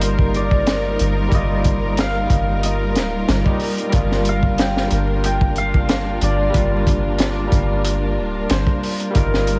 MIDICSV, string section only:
0, 0, Header, 1, 2, 480
1, 0, Start_track
1, 0, Key_signature, -2, "minor"
1, 0, Tempo, 652174
1, 971, Time_signature, 4, 2, 24, 8
1, 7059, End_track
2, 0, Start_track
2, 0, Title_t, "String section"
2, 0, Program_c, 0, 48
2, 0, Note_on_c, 0, 55, 80
2, 0, Note_on_c, 0, 63, 70
2, 0, Note_on_c, 0, 65, 73
2, 0, Note_on_c, 0, 70, 90
2, 2863, Note_off_c, 0, 63, 0
2, 2894, Note_on_c, 0, 62, 72
2, 6699, Note_off_c, 0, 70, 0
2, 6700, Note_off_c, 0, 55, 0
2, 6703, Note_off_c, 0, 62, 0
2, 6734, Note_on_c, 0, 55, 83
2, 6734, Note_on_c, 0, 63, 76
2, 6736, Note_on_c, 0, 70, 91
2, 7059, Note_off_c, 0, 55, 0
2, 7059, Note_off_c, 0, 63, 0
2, 7059, Note_off_c, 0, 65, 0
2, 7059, Note_off_c, 0, 70, 0
2, 7059, End_track
0, 0, End_of_file